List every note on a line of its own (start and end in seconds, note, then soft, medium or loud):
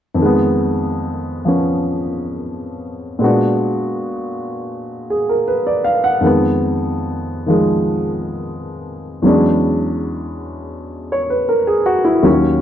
0.15 3.19 F2 soft
0.15 3.20 D#3 soft
0.22 3.19 G#3 soft
0.22 1.45 B3 medium
1.45 3.21 F3 soft
1.45 3.20 B3 soft
1.45 3.22 C#4 soft
3.19 6.21 A#2 soft
3.19 6.22 G#3 soft
3.19 6.23 B3 soft
3.23 6.23 D4 soft
3.23 6.24 F#4 medium
5.10 5.33 G#4 soft
5.29 5.55 A#4 soft
5.48 5.82 B4 soft
5.67 5.98 D5 medium
5.84 6.08 F5 medium
6.04 6.30 F#5 medium
6.21 9.22 F2 soft
6.21 7.45 D#3 soft
6.21 7.48 G#3 soft
6.25 9.25 B3 medium
7.46 9.22 D#3 soft
7.46 9.23 F3 soft
7.46 9.23 G#3 soft
9.22 12.23 E2 soft
9.22 12.23 E3 soft
9.22 12.22 F#3 soft
9.22 12.24 G#3 soft
9.22 12.23 C#4 soft
9.27 12.25 D4 soft
11.12 11.35 C#5 soft
11.30 11.56 B4 soft
11.49 11.83 A#4 soft
11.67 11.99 G#4 soft
11.86 12.09 F#4 medium
12.05 12.31 E4 medium
12.23 12.61 D#2 soft
12.23 12.61 D#3 soft
12.23 12.61 F#3 soft
12.23 12.61 C#4 medium